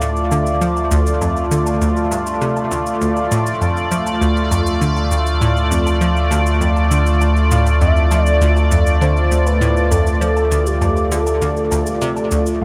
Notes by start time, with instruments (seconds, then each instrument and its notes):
Already playing: analog synth bass D2, analog synth pad A3 F4 D5
0.01 synth arpeggio sound A2, cabasa
0.16 cabasa
0.31 synth arpeggio sound D3, cabasa, low woodblock
0.46 cabasa
0.61 synth arpeggio sound F3, cabasa
0.76 cabasa, low woodblock
0.91 synth arpeggio sound D2, cabasa
1.06 cabasa
1.21 synth arpeggio sound F2, cabasa, low woodblock
1.36 cabasa
1.51 synth arpeggio sound D3, cabasa
1.66 cabasa, low woodblock
1.81 synth arpeggio sound D2, cabasa
1.97 cabasa
2.11 synth arpeggio sound G2, cabasa, low woodblock
2.27 cabasa
2.41 synth arpeggio sound C3, cabasa
2.56 cabasa, low woodblock
2.71 synth arpeggio sound D2, cabasa
2.86 cabasa
3.01 analog synth bass D2, synth arpeggio sound D2, analog synth pad D5, cabasa
3.16 cabasa, low woodblock
3.32 synth arpeggio sound A2, cabasa
3.46 cabasa
3.61 synth arpeggio sound F2, cabasa, low woodblock
3.77 cabasa
3.91 synth arpeggio sound F3, cabasa
4.07 cabasa, low woodblock
4.21 synth arpeggio sound D2, cabasa
4.37 cabasa
4.51 synth arpeggio sound F2, cabasa, low woodblock
4.66 cabasa
4.81 synth arpeggio sound D3, cabasa
4.97 cabasa, low woodblock
5.11 synth arpeggio sound D2, cabasa
5.26 cabasa
5.41 synth arpeggio sound A2, cabasa, low woodblock
5.57 cabasa
5.71 synth arpeggio sound F2, cabasa
5.87 cabasa, low woodblock
6.01 synth arpeggio sound F3, cabasa
6.16 cabasa
6.31 synth arpeggio sound D2, cabasa, low woodblock
6.46 cabasa
6.61 synth arpeggio sound F2, cabasa
6.76 cabasa, low woodblock
6.91 synth arpeggio sound D3, cabasa
7.06 cabasa
7.21 synth arpeggio sound D2, cabasa, low woodblock
7.36 cabasa
7.51 synth arpeggio sound A2, analog synth lead F5, cabasa
7.66 cabasa, low woodblock
7.81 synth arpeggio sound F2, analog synth lead E5, cabasa
7.96 cabasa
8.11 synth arpeggio sound F3, cabasa, low woodblock
8.24 analog synth lead D5, cabasa
8.41 synth arpeggio sound D2, analog synth lead D5, cabasa
8.56 cabasa, low woodblock
8.71 synth arpeggio sound F2, cabasa
8.87 cabasa
9.01 synth arpeggio sound D3, analog synth lead C5, cabasa, low woodblock
9.17 cabasa
9.31 synth arpeggio sound D2, cabasa
9.46 analog synth lead B4, cabasa, low woodblock
9.61 synth arpeggio sound A2, cabasa
9.77 cabasa
9.91 synth arpeggio sound F2, analog synth lead A4, cabasa, low woodblock
10.07 cabasa
10.21 synth arpeggio sound F3, cabasa
10.37 cabasa, low woodblock
10.51 synth arpeggio sound D2, cabasa
10.66 analog synth lead G4, cabasa
10.81 synth arpeggio sound F2, cabasa, low woodblock
10.97 cabasa
11.11 synth arpeggio sound D3, analog synth lead A4, cabasa
11.27 cabasa, low woodblock
11.41 synth arpeggio sound D2, cabasa
11.57 cabasa
11.71 synth arpeggio sound D2, cabasa, low woodblock
11.86 cabasa
11.91 analog synth lead G4
12.01 synth arpeggio sound C3, cabasa
12.16 cabasa, low woodblock
12.31 synth arpeggio sound D2, cabasa
12.46 cabasa
12.61 synth arpeggio sound C2, analog synth pad G3 D#4 C5